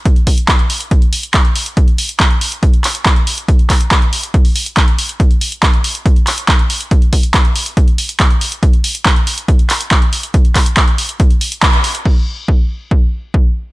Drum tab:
CC |----------------|----------------|----------------|----------------|
HH |xxoxxxoxxxoxxxox|xxoxxxoxxxoxxxox|xxoxxxoxxooxxxox|xxoxxxoxxxoxxxox|
CP |----x-------x---|----x-----x-x---|--x-x-------x---|----x-----x-x---|
BD |o-o-o---o---o---|o---o---o---o---|o-o-o---o---o---|o---o---o---o---|

CC |----------------|----------------|----------------|x---------------|
HH |xxoxxxoxxxoxxxox|xxoxxxoxxxoxxxox|xxoxxxoxxxoxxxox|----------------|
CP |----x-------x---|----x-----x-x---|--x-x-------x---|----------------|
BD |o-o-o---o---o---|o---o---o---o---|o-o-o---o---o---|o---o---o---o---|